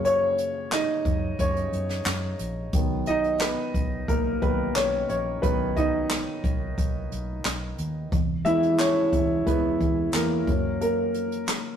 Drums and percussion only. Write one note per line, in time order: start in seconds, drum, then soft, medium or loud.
0.05 closed hi-hat medium
0.38 closed hi-hat medium
0.71 snare loud
0.71 clap medium
0.71 closed hi-hat medium
1.05 kick medium
1.05 closed hi-hat medium
1.39 kick medium
1.39 closed hi-hat medium
1.56 closed hi-hat soft
1.73 closed hi-hat medium
1.89 snare soft
2.06 snare medium
2.06 clap medium
2.06 closed hi-hat medium
2.39 closed hi-hat medium
2.73 kick loud
2.73 closed hi-hat medium
3.06 closed hi-hat medium
3.24 closed hi-hat soft
3.40 snare loud
3.40 clap medium
3.40 closed hi-hat medium
3.74 kick medium
3.74 closed hi-hat medium
4.08 kick medium
4.08 closed hi-hat medium
4.42 kick medium
4.42 closed hi-hat medium
4.76 snare medium
4.76 clap medium
4.76 closed hi-hat medium
5.09 closed hi-hat medium
5.43 kick loud
5.43 closed hi-hat medium
5.77 kick medium
5.77 closed hi-hat medium
6.10 snare medium
6.10 clap medium
6.10 closed hi-hat medium
6.44 kick medium
6.44 closed hi-hat medium
6.78 kick medium
6.78 closed hi-hat medium
7.12 closed hi-hat medium
7.45 snare medium
7.45 clap medium
7.45 closed hi-hat medium
7.78 closed hi-hat medium
8.12 kick loud
8.12 closed hi-hat medium
8.46 closed hi-hat medium
8.63 closed hi-hat soft
8.79 snare loud
8.79 clap medium
8.79 closed hi-hat medium
9.13 kick medium
9.13 closed hi-hat medium
9.47 kick medium
9.47 closed hi-hat medium
9.81 kick medium
9.81 closed hi-hat medium
10.14 snare medium
10.14 clap medium
10.14 closed hi-hat medium
10.47 kick loud
10.47 closed hi-hat medium
10.81 closed hi-hat medium
11.14 closed hi-hat medium
11.32 closed hi-hat medium
11.48 snare loud
11.48 clap medium
11.48 closed hi-hat medium